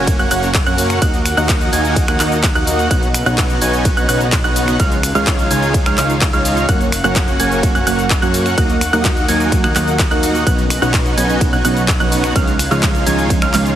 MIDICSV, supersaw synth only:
0, 0, Header, 1, 2, 480
1, 0, Start_track
1, 0, Key_signature, -6, "minor"
1, 0, Tempo, 472441
1, 1034, Time_signature, 4, 2, 24, 8
1, 13975, End_track
2, 0, Start_track
2, 0, Title_t, "Supersaw synth"
2, 0, Program_c, 0, 81
2, 0, Note_on_c, 0, 58, 74
2, 0, Note_on_c, 0, 61, 69
2, 0, Note_on_c, 0, 66, 66
2, 0, Note_on_c, 0, 73, 69
2, 0, Note_on_c, 0, 80, 85
2, 167, Note_off_c, 0, 58, 0
2, 167, Note_off_c, 0, 61, 0
2, 167, Note_off_c, 0, 66, 0
2, 167, Note_off_c, 0, 73, 0
2, 167, Note_off_c, 0, 80, 0
2, 196, Note_on_c, 0, 58, 90
2, 196, Note_on_c, 0, 61, 76
2, 196, Note_on_c, 0, 66, 77
2, 196, Note_on_c, 0, 73, 78
2, 196, Note_on_c, 0, 78, 92
2, 297, Note_off_c, 0, 58, 0
2, 297, Note_off_c, 0, 61, 0
2, 297, Note_off_c, 0, 66, 0
2, 297, Note_off_c, 0, 73, 0
2, 297, Note_off_c, 0, 78, 0
2, 315, Note_on_c, 0, 73, 83
2, 316, Note_on_c, 0, 58, 89
2, 316, Note_on_c, 0, 61, 89
2, 316, Note_on_c, 0, 66, 90
2, 316, Note_on_c, 0, 78, 106
2, 490, Note_off_c, 0, 58, 0
2, 490, Note_off_c, 0, 61, 0
2, 490, Note_off_c, 0, 66, 0
2, 490, Note_off_c, 0, 73, 0
2, 490, Note_off_c, 0, 78, 0
2, 675, Note_on_c, 0, 61, 91
2, 675, Note_on_c, 0, 66, 88
2, 675, Note_on_c, 0, 73, 83
2, 676, Note_on_c, 0, 58, 100
2, 676, Note_on_c, 0, 78, 108
2, 1006, Note_off_c, 0, 58, 0
2, 1006, Note_off_c, 0, 61, 0
2, 1006, Note_off_c, 0, 66, 0
2, 1006, Note_off_c, 0, 73, 0
2, 1006, Note_off_c, 0, 78, 0
2, 1036, Note_on_c, 0, 63, 84
2, 1036, Note_on_c, 0, 66, 87
2, 1036, Note_on_c, 0, 75, 88
2, 1036, Note_on_c, 0, 78, 105
2, 1037, Note_on_c, 0, 58, 91
2, 1210, Note_off_c, 0, 63, 0
2, 1210, Note_off_c, 0, 66, 0
2, 1210, Note_off_c, 0, 75, 0
2, 1210, Note_off_c, 0, 78, 0
2, 1211, Note_off_c, 0, 58, 0
2, 1396, Note_on_c, 0, 58, 87
2, 1396, Note_on_c, 0, 63, 83
2, 1396, Note_on_c, 0, 66, 80
2, 1396, Note_on_c, 0, 75, 81
2, 1396, Note_on_c, 0, 78, 98
2, 1726, Note_off_c, 0, 58, 0
2, 1726, Note_off_c, 0, 63, 0
2, 1726, Note_off_c, 0, 66, 0
2, 1726, Note_off_c, 0, 75, 0
2, 1726, Note_off_c, 0, 78, 0
2, 1755, Note_on_c, 0, 58, 72
2, 1755, Note_on_c, 0, 63, 70
2, 1755, Note_on_c, 0, 75, 70
2, 1755, Note_on_c, 0, 80, 84
2, 1756, Note_on_c, 0, 66, 68
2, 2086, Note_off_c, 0, 58, 0
2, 2086, Note_off_c, 0, 63, 0
2, 2086, Note_off_c, 0, 66, 0
2, 2086, Note_off_c, 0, 75, 0
2, 2086, Note_off_c, 0, 80, 0
2, 2114, Note_on_c, 0, 58, 84
2, 2114, Note_on_c, 0, 63, 77
2, 2114, Note_on_c, 0, 66, 82
2, 2114, Note_on_c, 0, 75, 78
2, 2114, Note_on_c, 0, 78, 98
2, 2216, Note_off_c, 0, 75, 0
2, 2216, Note_off_c, 0, 78, 0
2, 2217, Note_off_c, 0, 58, 0
2, 2217, Note_off_c, 0, 63, 0
2, 2217, Note_off_c, 0, 66, 0
2, 2235, Note_on_c, 0, 63, 83
2, 2235, Note_on_c, 0, 66, 82
2, 2236, Note_on_c, 0, 58, 95
2, 2236, Note_on_c, 0, 75, 82
2, 2236, Note_on_c, 0, 78, 109
2, 2410, Note_off_c, 0, 58, 0
2, 2410, Note_off_c, 0, 63, 0
2, 2410, Note_off_c, 0, 66, 0
2, 2410, Note_off_c, 0, 75, 0
2, 2410, Note_off_c, 0, 78, 0
2, 2594, Note_on_c, 0, 75, 86
2, 2594, Note_on_c, 0, 78, 105
2, 2595, Note_on_c, 0, 58, 99
2, 2595, Note_on_c, 0, 63, 86
2, 2595, Note_on_c, 0, 66, 84
2, 2925, Note_off_c, 0, 78, 0
2, 2926, Note_off_c, 0, 58, 0
2, 2926, Note_off_c, 0, 63, 0
2, 2926, Note_off_c, 0, 66, 0
2, 2926, Note_off_c, 0, 75, 0
2, 2953, Note_on_c, 0, 59, 88
2, 2953, Note_on_c, 0, 63, 86
2, 2953, Note_on_c, 0, 66, 86
2, 2953, Note_on_c, 0, 73, 81
2, 2953, Note_on_c, 0, 78, 102
2, 3129, Note_off_c, 0, 59, 0
2, 3129, Note_off_c, 0, 63, 0
2, 3129, Note_off_c, 0, 66, 0
2, 3129, Note_off_c, 0, 73, 0
2, 3129, Note_off_c, 0, 78, 0
2, 3314, Note_on_c, 0, 66, 80
2, 3314, Note_on_c, 0, 73, 80
2, 3314, Note_on_c, 0, 78, 96
2, 3315, Note_on_c, 0, 59, 89
2, 3315, Note_on_c, 0, 63, 79
2, 3646, Note_off_c, 0, 59, 0
2, 3646, Note_off_c, 0, 63, 0
2, 3646, Note_off_c, 0, 66, 0
2, 3646, Note_off_c, 0, 73, 0
2, 3646, Note_off_c, 0, 78, 0
2, 3674, Note_on_c, 0, 59, 79
2, 3674, Note_on_c, 0, 63, 68
2, 3674, Note_on_c, 0, 80, 84
2, 3675, Note_on_c, 0, 66, 71
2, 3675, Note_on_c, 0, 73, 70
2, 4005, Note_off_c, 0, 59, 0
2, 4005, Note_off_c, 0, 80, 0
2, 4006, Note_off_c, 0, 63, 0
2, 4006, Note_off_c, 0, 66, 0
2, 4006, Note_off_c, 0, 73, 0
2, 4033, Note_on_c, 0, 63, 79
2, 4033, Note_on_c, 0, 73, 80
2, 4034, Note_on_c, 0, 59, 86
2, 4034, Note_on_c, 0, 66, 79
2, 4034, Note_on_c, 0, 78, 99
2, 4136, Note_off_c, 0, 59, 0
2, 4136, Note_off_c, 0, 63, 0
2, 4136, Note_off_c, 0, 66, 0
2, 4136, Note_off_c, 0, 73, 0
2, 4136, Note_off_c, 0, 78, 0
2, 4152, Note_on_c, 0, 66, 84
2, 4152, Note_on_c, 0, 73, 90
2, 4153, Note_on_c, 0, 59, 91
2, 4153, Note_on_c, 0, 63, 85
2, 4153, Note_on_c, 0, 78, 99
2, 4329, Note_off_c, 0, 59, 0
2, 4329, Note_off_c, 0, 63, 0
2, 4329, Note_off_c, 0, 66, 0
2, 4329, Note_off_c, 0, 73, 0
2, 4329, Note_off_c, 0, 78, 0
2, 4513, Note_on_c, 0, 59, 99
2, 4513, Note_on_c, 0, 63, 88
2, 4513, Note_on_c, 0, 66, 86
2, 4513, Note_on_c, 0, 78, 105
2, 4514, Note_on_c, 0, 73, 89
2, 4845, Note_off_c, 0, 59, 0
2, 4845, Note_off_c, 0, 63, 0
2, 4845, Note_off_c, 0, 66, 0
2, 4845, Note_off_c, 0, 73, 0
2, 4845, Note_off_c, 0, 78, 0
2, 4874, Note_on_c, 0, 73, 90
2, 4874, Note_on_c, 0, 77, 102
2, 4875, Note_on_c, 0, 56, 94
2, 4875, Note_on_c, 0, 63, 87
2, 4875, Note_on_c, 0, 65, 87
2, 5049, Note_off_c, 0, 77, 0
2, 5050, Note_off_c, 0, 56, 0
2, 5050, Note_off_c, 0, 63, 0
2, 5050, Note_off_c, 0, 65, 0
2, 5050, Note_off_c, 0, 73, 0
2, 5233, Note_on_c, 0, 56, 86
2, 5233, Note_on_c, 0, 63, 83
2, 5233, Note_on_c, 0, 65, 77
2, 5233, Note_on_c, 0, 73, 79
2, 5233, Note_on_c, 0, 77, 93
2, 5565, Note_off_c, 0, 56, 0
2, 5565, Note_off_c, 0, 63, 0
2, 5565, Note_off_c, 0, 65, 0
2, 5565, Note_off_c, 0, 73, 0
2, 5565, Note_off_c, 0, 77, 0
2, 5593, Note_on_c, 0, 56, 79
2, 5593, Note_on_c, 0, 63, 69
2, 5593, Note_on_c, 0, 65, 72
2, 5593, Note_on_c, 0, 73, 68
2, 5593, Note_on_c, 0, 80, 83
2, 5925, Note_off_c, 0, 56, 0
2, 5925, Note_off_c, 0, 63, 0
2, 5925, Note_off_c, 0, 65, 0
2, 5925, Note_off_c, 0, 73, 0
2, 5925, Note_off_c, 0, 80, 0
2, 5954, Note_on_c, 0, 56, 85
2, 5954, Note_on_c, 0, 63, 76
2, 5954, Note_on_c, 0, 65, 83
2, 5954, Note_on_c, 0, 73, 81
2, 5954, Note_on_c, 0, 77, 97
2, 6056, Note_off_c, 0, 56, 0
2, 6056, Note_off_c, 0, 63, 0
2, 6056, Note_off_c, 0, 65, 0
2, 6056, Note_off_c, 0, 73, 0
2, 6056, Note_off_c, 0, 77, 0
2, 6074, Note_on_c, 0, 56, 96
2, 6074, Note_on_c, 0, 63, 84
2, 6074, Note_on_c, 0, 65, 84
2, 6074, Note_on_c, 0, 73, 84
2, 6074, Note_on_c, 0, 77, 106
2, 6249, Note_off_c, 0, 56, 0
2, 6249, Note_off_c, 0, 73, 0
2, 6249, Note_off_c, 0, 77, 0
2, 6250, Note_off_c, 0, 63, 0
2, 6250, Note_off_c, 0, 65, 0
2, 6434, Note_on_c, 0, 56, 96
2, 6434, Note_on_c, 0, 63, 83
2, 6434, Note_on_c, 0, 65, 86
2, 6434, Note_on_c, 0, 73, 86
2, 6434, Note_on_c, 0, 77, 106
2, 6765, Note_off_c, 0, 65, 0
2, 6765, Note_off_c, 0, 77, 0
2, 6766, Note_off_c, 0, 56, 0
2, 6766, Note_off_c, 0, 63, 0
2, 6766, Note_off_c, 0, 73, 0
2, 6795, Note_on_c, 0, 58, 93
2, 6795, Note_on_c, 0, 61, 88
2, 6795, Note_on_c, 0, 66, 90
2, 6795, Note_on_c, 0, 73, 88
2, 6795, Note_on_c, 0, 78, 108
2, 6970, Note_off_c, 0, 58, 0
2, 6970, Note_off_c, 0, 61, 0
2, 6970, Note_off_c, 0, 66, 0
2, 6970, Note_off_c, 0, 73, 0
2, 6970, Note_off_c, 0, 78, 0
2, 7153, Note_on_c, 0, 73, 80
2, 7154, Note_on_c, 0, 58, 90
2, 7154, Note_on_c, 0, 61, 78
2, 7154, Note_on_c, 0, 66, 80
2, 7154, Note_on_c, 0, 78, 99
2, 7485, Note_off_c, 0, 58, 0
2, 7485, Note_off_c, 0, 61, 0
2, 7485, Note_off_c, 0, 66, 0
2, 7485, Note_off_c, 0, 73, 0
2, 7485, Note_off_c, 0, 78, 0
2, 7514, Note_on_c, 0, 58, 71
2, 7514, Note_on_c, 0, 61, 68
2, 7514, Note_on_c, 0, 66, 70
2, 7514, Note_on_c, 0, 73, 71
2, 7514, Note_on_c, 0, 80, 86
2, 7845, Note_off_c, 0, 58, 0
2, 7845, Note_off_c, 0, 61, 0
2, 7845, Note_off_c, 0, 66, 0
2, 7845, Note_off_c, 0, 73, 0
2, 7845, Note_off_c, 0, 80, 0
2, 7874, Note_on_c, 0, 61, 77
2, 7874, Note_on_c, 0, 73, 83
2, 7874, Note_on_c, 0, 78, 94
2, 7875, Note_on_c, 0, 58, 83
2, 7875, Note_on_c, 0, 66, 80
2, 7976, Note_off_c, 0, 61, 0
2, 7976, Note_off_c, 0, 73, 0
2, 7976, Note_off_c, 0, 78, 0
2, 7977, Note_off_c, 0, 58, 0
2, 7977, Note_off_c, 0, 66, 0
2, 7994, Note_on_c, 0, 61, 86
2, 7994, Note_on_c, 0, 73, 83
2, 7994, Note_on_c, 0, 78, 103
2, 7995, Note_on_c, 0, 58, 96
2, 7995, Note_on_c, 0, 66, 81
2, 8169, Note_off_c, 0, 61, 0
2, 8169, Note_off_c, 0, 73, 0
2, 8169, Note_off_c, 0, 78, 0
2, 8170, Note_off_c, 0, 58, 0
2, 8170, Note_off_c, 0, 66, 0
2, 8353, Note_on_c, 0, 66, 88
2, 8354, Note_on_c, 0, 58, 92
2, 8354, Note_on_c, 0, 61, 86
2, 8354, Note_on_c, 0, 73, 89
2, 8354, Note_on_c, 0, 78, 108
2, 8685, Note_off_c, 0, 58, 0
2, 8685, Note_off_c, 0, 61, 0
2, 8685, Note_off_c, 0, 66, 0
2, 8685, Note_off_c, 0, 73, 0
2, 8685, Note_off_c, 0, 78, 0
2, 8714, Note_on_c, 0, 58, 91
2, 8714, Note_on_c, 0, 66, 87
2, 8714, Note_on_c, 0, 75, 86
2, 8714, Note_on_c, 0, 78, 100
2, 8715, Note_on_c, 0, 63, 85
2, 8889, Note_off_c, 0, 58, 0
2, 8889, Note_off_c, 0, 66, 0
2, 8889, Note_off_c, 0, 75, 0
2, 8889, Note_off_c, 0, 78, 0
2, 8890, Note_off_c, 0, 63, 0
2, 9073, Note_on_c, 0, 58, 86
2, 9073, Note_on_c, 0, 63, 83
2, 9074, Note_on_c, 0, 66, 83
2, 9074, Note_on_c, 0, 75, 81
2, 9074, Note_on_c, 0, 78, 99
2, 9405, Note_off_c, 0, 58, 0
2, 9405, Note_off_c, 0, 63, 0
2, 9405, Note_off_c, 0, 66, 0
2, 9405, Note_off_c, 0, 75, 0
2, 9406, Note_off_c, 0, 78, 0
2, 9433, Note_on_c, 0, 58, 77
2, 9433, Note_on_c, 0, 63, 66
2, 9433, Note_on_c, 0, 75, 69
2, 9433, Note_on_c, 0, 80, 85
2, 9434, Note_on_c, 0, 66, 69
2, 9765, Note_off_c, 0, 58, 0
2, 9765, Note_off_c, 0, 63, 0
2, 9765, Note_off_c, 0, 66, 0
2, 9765, Note_off_c, 0, 75, 0
2, 9765, Note_off_c, 0, 80, 0
2, 9793, Note_on_c, 0, 58, 84
2, 9793, Note_on_c, 0, 63, 82
2, 9793, Note_on_c, 0, 66, 80
2, 9793, Note_on_c, 0, 75, 81
2, 9793, Note_on_c, 0, 78, 96
2, 9895, Note_off_c, 0, 78, 0
2, 9896, Note_off_c, 0, 58, 0
2, 9896, Note_off_c, 0, 63, 0
2, 9896, Note_off_c, 0, 66, 0
2, 9896, Note_off_c, 0, 75, 0
2, 9913, Note_on_c, 0, 58, 99
2, 9913, Note_on_c, 0, 63, 86
2, 9913, Note_on_c, 0, 66, 84
2, 9913, Note_on_c, 0, 75, 90
2, 9913, Note_on_c, 0, 78, 103
2, 10089, Note_off_c, 0, 58, 0
2, 10089, Note_off_c, 0, 63, 0
2, 10089, Note_off_c, 0, 66, 0
2, 10089, Note_off_c, 0, 75, 0
2, 10089, Note_off_c, 0, 78, 0
2, 10273, Note_on_c, 0, 58, 90
2, 10273, Note_on_c, 0, 66, 86
2, 10273, Note_on_c, 0, 75, 86
2, 10273, Note_on_c, 0, 78, 103
2, 10274, Note_on_c, 0, 63, 88
2, 10605, Note_off_c, 0, 58, 0
2, 10605, Note_off_c, 0, 63, 0
2, 10605, Note_off_c, 0, 66, 0
2, 10605, Note_off_c, 0, 75, 0
2, 10605, Note_off_c, 0, 78, 0
2, 10633, Note_on_c, 0, 59, 96
2, 10633, Note_on_c, 0, 63, 86
2, 10633, Note_on_c, 0, 66, 84
2, 10634, Note_on_c, 0, 73, 83
2, 10634, Note_on_c, 0, 78, 102
2, 10809, Note_off_c, 0, 59, 0
2, 10809, Note_off_c, 0, 63, 0
2, 10809, Note_off_c, 0, 66, 0
2, 10809, Note_off_c, 0, 73, 0
2, 10809, Note_off_c, 0, 78, 0
2, 10993, Note_on_c, 0, 59, 88
2, 10993, Note_on_c, 0, 63, 85
2, 10993, Note_on_c, 0, 66, 80
2, 10993, Note_on_c, 0, 73, 83
2, 10993, Note_on_c, 0, 78, 97
2, 11325, Note_off_c, 0, 59, 0
2, 11325, Note_off_c, 0, 63, 0
2, 11325, Note_off_c, 0, 66, 0
2, 11325, Note_off_c, 0, 73, 0
2, 11325, Note_off_c, 0, 78, 0
2, 11353, Note_on_c, 0, 59, 80
2, 11354, Note_on_c, 0, 63, 70
2, 11354, Note_on_c, 0, 66, 69
2, 11354, Note_on_c, 0, 73, 70
2, 11354, Note_on_c, 0, 80, 84
2, 11685, Note_off_c, 0, 59, 0
2, 11685, Note_off_c, 0, 66, 0
2, 11685, Note_off_c, 0, 80, 0
2, 11686, Note_off_c, 0, 63, 0
2, 11686, Note_off_c, 0, 73, 0
2, 11712, Note_on_c, 0, 78, 97
2, 11713, Note_on_c, 0, 59, 85
2, 11713, Note_on_c, 0, 63, 81
2, 11713, Note_on_c, 0, 66, 77
2, 11713, Note_on_c, 0, 73, 80
2, 11815, Note_off_c, 0, 78, 0
2, 11816, Note_off_c, 0, 59, 0
2, 11816, Note_off_c, 0, 63, 0
2, 11816, Note_off_c, 0, 66, 0
2, 11816, Note_off_c, 0, 73, 0
2, 11832, Note_on_c, 0, 59, 94
2, 11832, Note_on_c, 0, 63, 87
2, 11832, Note_on_c, 0, 73, 84
2, 11833, Note_on_c, 0, 66, 86
2, 11833, Note_on_c, 0, 78, 104
2, 12008, Note_off_c, 0, 59, 0
2, 12008, Note_off_c, 0, 63, 0
2, 12009, Note_off_c, 0, 66, 0
2, 12009, Note_off_c, 0, 73, 0
2, 12009, Note_off_c, 0, 78, 0
2, 12194, Note_on_c, 0, 59, 96
2, 12194, Note_on_c, 0, 63, 88
2, 12194, Note_on_c, 0, 66, 85
2, 12194, Note_on_c, 0, 73, 88
2, 12194, Note_on_c, 0, 78, 105
2, 12525, Note_off_c, 0, 59, 0
2, 12525, Note_off_c, 0, 63, 0
2, 12525, Note_off_c, 0, 73, 0
2, 12526, Note_off_c, 0, 66, 0
2, 12526, Note_off_c, 0, 78, 0
2, 12553, Note_on_c, 0, 56, 93
2, 12553, Note_on_c, 0, 63, 85
2, 12553, Note_on_c, 0, 65, 84
2, 12553, Note_on_c, 0, 73, 82
2, 12553, Note_on_c, 0, 77, 104
2, 12729, Note_off_c, 0, 56, 0
2, 12729, Note_off_c, 0, 63, 0
2, 12729, Note_off_c, 0, 65, 0
2, 12729, Note_off_c, 0, 73, 0
2, 12729, Note_off_c, 0, 77, 0
2, 12914, Note_on_c, 0, 56, 88
2, 12915, Note_on_c, 0, 63, 81
2, 12915, Note_on_c, 0, 65, 80
2, 12915, Note_on_c, 0, 73, 77
2, 12915, Note_on_c, 0, 77, 99
2, 13246, Note_off_c, 0, 56, 0
2, 13246, Note_off_c, 0, 63, 0
2, 13246, Note_off_c, 0, 65, 0
2, 13246, Note_off_c, 0, 73, 0
2, 13246, Note_off_c, 0, 77, 0
2, 13274, Note_on_c, 0, 56, 74
2, 13274, Note_on_c, 0, 63, 70
2, 13274, Note_on_c, 0, 65, 69
2, 13274, Note_on_c, 0, 73, 68
2, 13274, Note_on_c, 0, 80, 82
2, 13605, Note_off_c, 0, 73, 0
2, 13605, Note_off_c, 0, 80, 0
2, 13606, Note_off_c, 0, 56, 0
2, 13606, Note_off_c, 0, 63, 0
2, 13606, Note_off_c, 0, 65, 0
2, 13634, Note_on_c, 0, 56, 85
2, 13634, Note_on_c, 0, 65, 79
2, 13635, Note_on_c, 0, 63, 79
2, 13635, Note_on_c, 0, 73, 81
2, 13635, Note_on_c, 0, 77, 97
2, 13736, Note_off_c, 0, 56, 0
2, 13736, Note_off_c, 0, 65, 0
2, 13737, Note_off_c, 0, 63, 0
2, 13737, Note_off_c, 0, 73, 0
2, 13737, Note_off_c, 0, 77, 0
2, 13753, Note_on_c, 0, 56, 97
2, 13753, Note_on_c, 0, 63, 87
2, 13753, Note_on_c, 0, 73, 88
2, 13753, Note_on_c, 0, 77, 103
2, 13754, Note_on_c, 0, 65, 84
2, 13929, Note_off_c, 0, 56, 0
2, 13929, Note_off_c, 0, 63, 0
2, 13929, Note_off_c, 0, 65, 0
2, 13929, Note_off_c, 0, 73, 0
2, 13929, Note_off_c, 0, 77, 0
2, 13975, End_track
0, 0, End_of_file